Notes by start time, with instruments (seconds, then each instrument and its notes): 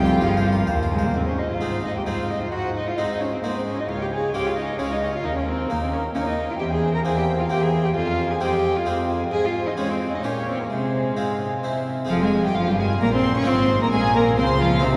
Already playing: double bass section F1, harpsichord F2, cello section F2, cello G3, viola section F4, violin section G4 G5
0.06 harpsichord G4
0.21 double bass section G1, harpsichord G2 G#4, cello section G2, cello F3, violin section F4 F5
0.37 harpsichord C5
0.52 harpsichord A#4
0.67 harpsichord D#2 C5, cello section D#2, double bass section D#2
0.83 harpsichord F4
0.92 cello G#3, violin section G#4
0.99 harpsichord C5
1.04 cello A#3, violin section A#4
1.14 harpsichord G#2, cello section G#2, cello C4, violin section C5 D#5, viola section C5
1.27 cello C#4, violin section C#5
1.38 cello D#4, viola section C5, violin section D#5
1.50 cello F4, violin section F5
1.61 harpsichord G#2 G#3 C4 D#4, cello section G#2, viola section C5, violin section D#5
1.84 cello D#4, viola section C5, violin section D#5
1.96 cello G4, violin section G5
2.06 harpsichord G#2 G#3 C4 D#4, cello section G#2, cello F4, viola section C5, violin section D#5 F5
2.29 cello D#4, viola section C5, violin section D#5
2.42 cello F4, violin section F5
2.52 harpsichord G#2, cello section G#2, cello F#4, viola section C5, violin section D#5 F#5
2.75 cello D#4, viola section C5, violin section D#5
2.88 cello F4, violin section F5
2.98 harpsichord G#2 G#3 C4 D#4, cello section G#2, cello D#4, viola section C5, violin section D#5
3.20 cello C#4, viola section C5, violin section C#5 D#5
3.31 cello C4, violin section C5
3.43 cello section G#2, harpsichord G#2 G#3 C4 D#4, cello A#3, violin section A#4 D#5, viola section C5
3.55 cello C4, violin section C5
3.65 cello C#4, viola section C5, violin section C#5 D#5
3.78 cello D#4, violin section D#5
3.88 harpsichord C#2, cello section C#2, cello F4, viola section C#5, violin section F5
4.01 cello G4, violin section G5
4.12 cello G#4, viola section C#5, violin section F5 G#5
4.34 harpsichord C#2 G#3 C#4 F4, cello section C#2, cello G4, viola section C#5, violin section F5 G5
4.46 cello F4, violin section F5
4.56 cello D#4, viola section C#5, violin section D#5 F5
4.79 harpsichord C#2 G#3 C#4 F4, cello section C#2, cello C#4, violin section C#5 F5, viola section C#5
4.91 cello D#4, violin section D#5
5.02 viola section C#5, violin section F5
5.13 cello F4, violin section F5
5.24 harpsichord D#2, cello section D#2, cello D#4, viola section A#4, violin section D#5 G5
5.37 cello C#4, violin section C#5
5.47 cello C4, viola section A#4, violin section C5 G5
5.69 cello section D#2, harpsichord D#2 A#3 D#4, cello A#3, viola section A#4, violin section A#4 G5
5.81 cello C4, violin section C5
5.92 cello C#4, viola section A#4, violin section C#5 G5
6.14 cello section D#2, harpsichord D#2 A#3 D#4, cello C#4, viola section A#4, violin section C#5 G5
6.26 cello D#4, violin section D#5
6.37 viola section A#4, violin section G5
6.48 cello F4, violin section F5
6.59 cello section E2, harpsichord E2, cello G4, viola section C5, violin section G5
6.70 cello G#4, violin section G#5
6.82 viola section C5, violin section G5
6.93 cello A#4, violin section A#5
7.05 harpsichord E2 A#3 C4, cello section E2, cello G#4, viola section C5, violin section G5 G#5
7.16 cello G4, violin section G5
7.27 viola section C5, violin section G5
7.39 cello F4, violin section F5
7.50 harpsichord E2 A#3 C4, cello section E2, cello G4, viola section C5, violin section G5
7.61 cello G#4, violin section G#5
7.73 viola section C5, violin section G5
7.84 cello G4, violin section G5
7.94 harpsichord F2, cello section F2, cello F4, viola section C5, violin section F5 G#5
8.18 viola section C5, violin section G#5
8.30 cello G#4, violin section G#5
8.41 harpsichord F2 G#3 C4 F4, cello section F2, cello G4, viola section C5, violin section G5 G#5
8.63 viola section C5, violin section G#5
8.76 cello F4, violin section F5
8.86 harpsichord F2 G#3 C4 F4, cello section F2, viola section C5, violin section G#5
9.09 viola section C5, violin section G#5
9.31 harpsichord G#2, cello section G#2, cello G#4, viola section C5, violin section G#5
9.44 cello F4, violin section F5
9.65 cello D#4, violin section D#5
9.77 harpsichord G#3 C4 F4, cello section G#3, cello C#4, violin section C#5
9.88 cello C4, violin section C5
10.11 cello D#4, violin section D#5
10.22 harpsichord A#2 C#4 G4, cello section A#2, cello C#4, violin section C#5 G5, viola section C#5
10.47 cello C4, violin section C5
10.59 cello A#3, violin section A#4
10.70 cello section C3, harpsichord C3, cello G#3, violin section G#4 F5, viola section C5
11.17 harpsichord G#2 G#3 C4 F4, cello section G#2
11.63 harpsichord C3 C4 E4, cello section C3, viola section C5, violin section E5
12.05 harpsichord G#3 C4 F4
12.09 double bass section F1, harpsichord F2, cello section F2, cello F3, viola section F4, violin section F4 F5
12.21 cello G#3, violin section G#4 G#5
12.44 cello G3, violin section G4 G5
12.55 double bass section G1, harpsichord G2, cello section G2, cello F3, viola section F4, violin section F4 F5
12.67 cello G3, violin section G4 G5
12.78 cello G#3, violin section G#4 G#5
13.01 double bass section A#1, harpsichord A#2, cello section A#2, cello A#3, violin section A#4 A#5
13.12 cello C4, violin section C5 C6
13.35 cello C#4, violin section C#5 C#6
13.42 harpsichord G#3 C4 F4
13.46 double bass section G#1, harpsichord G#2, cello section G#2, cello C4, viola section F4, violin section C5 C6
13.81 cello A#3, violin section A#4 A#5
13.92 double bass section A#1, harpsichord A#2, cello section A#2, cello G#3, viola section F4, violin section G#4 G#5
14.15 cello A#3, violin section A#4 A#5
14.36 double bass section C#2, harpsichord C#3, cello section C#3, cello C4, viola section F4, violin section C5 C6
14.60 cello F3, violin section F4 F5
14.80 double bass section C2, cello C3, harpsichord C3 C4 D#4, violin section C4 C5, viola section C4
14.84 cello section C3